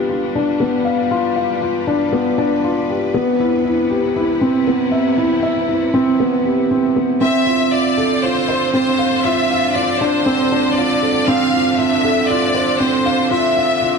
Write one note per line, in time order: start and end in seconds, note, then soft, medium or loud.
0.00 3.14 G3 medium
0.00 0.60 B3 medium
0.00 4.77 D4 medium
0.00 0.09 F4 medium
0.00 3.14 F4 medium
0.00 2.90 G4 medium
0.09 0.24 F4 medium
0.35 0.50 D4 medium
0.41 7.21 B4 medium
0.60 0.84 B3 medium
0.85 1.00 F5 medium
1.11 1.35 F4 medium
1.36 1.61 F5 medium
1.62 1.86 F4 medium
1.87 2.11 D4 medium
2.13 2.27 B3 medium
2.38 2.62 D4 medium
2.64 2.78 F4 medium
2.90 3.13 G4 medium
3.14 7.21 C3 medium
3.14 3.39 B3 medium
3.40 3.63 E4 medium
3.63 7.21 E4 medium
3.63 3.89 E4 medium
3.90 4.05 G4 medium
4.16 4.31 E4 medium
4.41 4.56 C4 medium
4.67 4.91 B3 medium
4.92 5.07 E5 medium
5.18 5.42 E4 medium
5.43 5.67 E5 medium
5.68 5.93 E4 medium
5.94 6.18 C4 medium
6.20 6.34 B3 medium
6.45 6.69 G4 medium
6.71 6.95 C4 medium
6.96 7.20 B3 medium
7.20 13.98 D3 medium
7.20 7.45 C4 medium
7.20 7.69 E5 medium
7.37 11.55 F4 medium
7.46 7.70 F4 medium
7.72 7.96 F4 medium
7.72 8.23 D5 medium
7.90 13.98 D4 medium
7.97 8.12 A4 medium
8.23 8.38 F4 medium
8.23 8.72 C5 medium
8.31 13.98 C5 soft
8.49 8.73 C5 medium
8.73 8.98 C4 medium
8.73 9.21 C5 medium
8.99 9.14 F5 medium
9.24 9.49 F4 medium
9.24 9.75 E5 medium
9.50 9.74 F5 medium
9.75 10.00 F4 medium
9.75 10.01 D5 medium
10.00 10.25 D4 medium
10.00 10.77 C5 medium
10.26 10.41 C4 medium
10.52 10.76 D4 medium
10.75 10.92 F4 medium
10.75 11.27 D5 medium
11.02 11.27 A4 medium
11.26 11.52 C4 medium
11.26 11.78 F5 medium
11.53 11.77 F4 medium
11.78 12.03 F4 medium
11.78 12.29 E5 medium
12.04 12.19 A4 medium
12.28 12.44 F4 medium
12.28 12.80 D5 medium
12.54 12.79 C5 medium
12.78 13.05 C4 medium
12.78 13.30 C5 medium
13.06 13.20 F5 medium
13.30 13.55 F4 medium
13.30 13.98 E5 medium
13.57 13.81 F5 medium
13.82 13.98 F4 medium